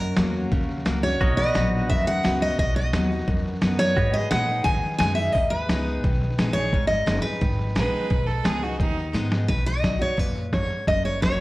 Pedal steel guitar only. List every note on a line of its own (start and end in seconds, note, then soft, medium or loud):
0.00 1.19 F#4 medium
0.00 1.19 A#4 medium
0.00 1.20 C#5 medium
1.21 3.94 F#4 medium
1.21 1.42 A#4 medium
1.21 3.95 D#5 medium
1.42 3.94 B4 medium
3.97 4.22 F#4 medium
3.97 9.45 B4 medium
3.97 9.46 D#5 medium
4.22 9.45 G#4 medium